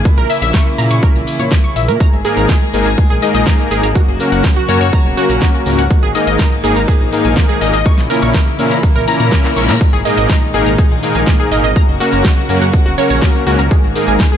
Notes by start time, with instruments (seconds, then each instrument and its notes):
Already playing: string section A#3
0.05 string section C#3 E3 E4, kick, closed hi-hat, shaker
0.17 detuned saw bass A#1, synth pluck A#4, shaker
0.30 synth pluck E5, open hi-hat, shaker
0.42 detuned saw bass A#1, synth pluck E5, closed hi-hat, shaker
0.54 synth pluck C#6, kick, snare, closed hi-hat, shaker
0.78 detuned saw bass A#2, synth pluck A#5, open hi-hat, shaker
0.91 detuned saw bass A#2, synth pluck C#6, closed hi-hat, shaker
1.03 synth pluck A#4, kick, closed hi-hat, shaker
1.15 detuned saw bass A#1, shaker
1.27 open hi-hat, shaker
1.39 detuned saw bass A#2, synth pluck C#5, closed hi-hat, shaker
1.51 kick, snare, closed hi-hat, shaker
1.64 synth pluck C#6, shaker
1.76 detuned saw bass A#1, synth pluck E5, open hi-hat, shaker
1.88 detuned saw bass A#2, synth pluck A#4, closed hi-hat, shaker
2.00 string section D#3 G#3 A#3 G#4, synth pluck A#5, kick, closed hi-hat, shaker
2.13 detuned saw bass G#1
2.25 supersaw synth G#2 A#3 D#4 G#4 A#4, synth pluck G#4, open hi-hat, shaker
2.37 detuned saw bass G#1, synth pluck A#5, closed hi-hat, shaker
2.49 synth pluck G#4, kick, snare, closed hi-hat, shaker
2.73 detuned saw bass G#1, supersaw synth G#2 A#3 D#4 G#4 A#4, open hi-hat, shaker
2.86 detuned saw bass G#1, synth pluck G#5, closed hi-hat, shaker
2.98 kick, closed hi-hat, shaker
3.10 detuned saw bass A#1, synth pluck G#4
3.22 supersaw synth G#2 A#3 D#4 G#4 A#4, synth pluck D#5, open hi-hat, shaker
3.34 detuned saw bass A#1, synth pluck D#5, closed hi-hat, shaker
3.47 synth pluck A#5, kick, snare, closed hi-hat, shaker
3.60 shaker
3.71 detuned saw bass G#1, supersaw synth A#3 D#4 G#4 A#4, synth pluck G#4, open hi-hat, shaker
3.83 detuned saw bass G#1, synth pluck A#5, closed hi-hat, shaker
3.95 string section C#3 F#3 F#4, synth pluck F#4, kick, closed hi-hat, shaker
4.08 detuned saw bass F#1
4.20 supersaw synth A#3 C#4 F#4 A#4, open hi-hat, shaker
4.32 detuned saw bass F#1, synth pluck F#5, closed hi-hat, shaker
4.44 kick, snare, closed hi-hat, shaker
4.56 synth pluck F#4
4.69 detuned saw bass F#2, supersaw synth A#3 C#4 F#4 A#4, synth pluck C#5, open hi-hat, shaker
4.81 detuned saw bass F#2, synth pluck C#5, closed hi-hat, shaker
4.93 synth pluck A#5, kick, closed hi-hat, shaker
5.05 detuned saw bass E1
5.17 supersaw synth A#3 C#4 F#4 A#4, synth pluck F#4, open hi-hat, shaker
5.29 detuned saw bass A#1, synth pluck A#5, closed hi-hat, shaker
5.42 synth pluck F#4, kick, snare, closed hi-hat, shaker
5.55 shaker
5.66 detuned saw bass C#2, supersaw synth G#2 A#3 C#4 F#4 A#4, open hi-hat, shaker
5.78 detuned saw bass C#2, synth pluck F#5, closed hi-hat, shaker
5.90 string section G#2 D#3 A#3 D#4, kick, closed hi-hat, shaker
6.03 detuned saw bass G#1, synth pluck G#4
6.15 supersaw synth G#2 A#3 D#4 G#4 A#4, synth pluck D#5, open hi-hat, shaker
6.27 detuned saw bass G#1, synth pluck D#5, closed hi-hat, shaker
6.39 synth pluck A#5, kick, snare, closed hi-hat, shaker
6.64 detuned saw bass G#1, supersaw synth G#2 A#3 D#4 G#4 A#4, synth pluck G#4, open hi-hat, shaker
6.76 detuned saw bass G#1, synth pluck A#5, closed hi-hat, shaker
6.88 synth pluck G#4, kick, closed hi-hat, shaker
7.00 detuned saw bass A#1
7.12 supersaw synth G#2 A#3 D#4 G#4 A#4, open hi-hat, shaker
7.25 detuned saw bass A#1, synth pluck G#5, closed hi-hat, shaker
7.37 kick, snare, closed hi-hat, shaker
7.49 synth pluck G#4, shaker
7.61 detuned saw bass G#1, supersaw synth A#2 A#3 D#4 G#4 A#4, synth pluck D#5, open hi-hat, shaker
7.74 detuned saw bass G#1, synth pluck D#5, closed hi-hat, shaker
7.86 string section C#3 E3 A#3 E4, synth pluck C#6, kick, closed hi-hat, shaker
7.98 detuned saw bass A#1, snare
8.10 supersaw synth A#2 A#3 C#4 E4 A#4, synth pluck A#4, open hi-hat, shaker
8.22 detuned saw bass A#1, synth pluck C#6, closed hi-hat, shaker
8.34 synth pluck A#4, kick, snare, closed hi-hat, shaker
8.59 detuned saw bass A#2, supersaw synth A#2 A#3 C#4 E4 A#4, open hi-hat, shaker
8.71 detuned saw bass A#2, synth pluck A#5, closed hi-hat, shaker
8.83 kick, closed hi-hat, reverse cymbal, shaker
8.95 detuned saw bass A#1, synth pluck A#4, shaker
9.08 supersaw synth A#2 A#3 C#4 E4 A#4, synth pluck A#5, open hi-hat, shaker
9.20 detuned saw bass A#2, synth pluck A#5, closed hi-hat, shaker
9.32 synth pluck A#4, kick, snare, closed hi-hat, shaker
9.44 synth pluck A#4, clap, shaker
9.56 detuned saw bass A#1, supersaw synth G#2 A#3 C#4 E4 A#4, synth pluck C#6, open hi-hat, shaker
9.69 detuned saw bass A#2, synth pluck A#5, clap, closed hi-hat, shaker
9.81 string section A#2 D#3 G#3 D#4, kick, closed hi-hat, shaker
9.93 detuned saw bass G#1, synth pluck G#4
10.05 supersaw synth G#2 A#3 D#4 G#4 A#4, synth pluck D#5, open hi-hat, shaker
10.17 detuned saw bass G#1, synth pluck D#5, closed hi-hat, shaker
10.30 synth pluck A#5, kick, snare, closed hi-hat, shaker
10.54 detuned saw bass G#1, supersaw synth G#2 A#3 D#4 G#4 A#4, synth pluck G#4, open hi-hat, shaker
10.66 detuned saw bass G#1, synth pluck A#5, closed hi-hat, shaker
10.78 synth pluck G#4, kick, closed hi-hat, shaker
10.91 detuned saw bass A#1
11.03 supersaw synth G#2 A#3 D#4 G#4 A#4, open hi-hat, shaker
11.15 detuned saw bass A#1, synth pluck G#5, closed hi-hat, shaker
11.27 kick, snare, closed hi-hat, shaker
11.40 synth pluck G#4, shaker
11.52 detuned saw bass G#1, supersaw synth A#3 D#4 G#4 A#4, synth pluck D#5, open hi-hat, shaker
11.64 detuned saw bass G#1, synth pluck D#5, closed hi-hat, shaker
11.76 string section C#3 F#3 A#3 F#4, synth pluck A#5, kick, closed hi-hat, shaker
11.88 detuned saw bass F#1
12.00 supersaw synth A#3 C#4 F#4 A#4, synth pluck F#4, open hi-hat, shaker
12.13 detuned saw bass F#1, synth pluck A#5, closed hi-hat, shaker
12.25 synth pluck F#4, kick, snare, closed hi-hat, shaker
12.49 detuned saw bass F#2, supersaw synth A#3 C#4 F#4 A#4, open hi-hat, shaker
12.61 detuned saw bass F#2, synth pluck F#5, closed hi-hat, shaker
12.73 kick, closed hi-hat, shaker
12.86 detuned saw bass E1, synth pluck F#4
12.98 supersaw synth A#3 C#4 F#4 A#4, synth pluck C#5, open hi-hat, shaker
13.10 detuned saw bass A#1, synth pluck C#5, closed hi-hat, shaker
13.22 synth pluck A#5, kick, snare, closed hi-hat, shaker
13.35 shaker
13.47 detuned saw bass C#2, supersaw synth G#2 A#3 C#4 F#4 A#4, synth pluck F#4, open hi-hat, shaker
13.59 detuned saw bass C#2, synth pluck A#5, closed hi-hat, shaker
13.71 string section D#3 G#3 G#4, synth pluck G#4, kick, closed hi-hat, shaker
13.83 detuned saw bass G#1
13.95 supersaw synth G#2 A#3 D#4 G#4 A#4, open hi-hat, shaker
14.08 detuned saw bass G#1, synth pluck G#5, closed hi-hat, shaker
14.20 kick, snare, closed hi-hat, shaker
14.32 synth pluck G#4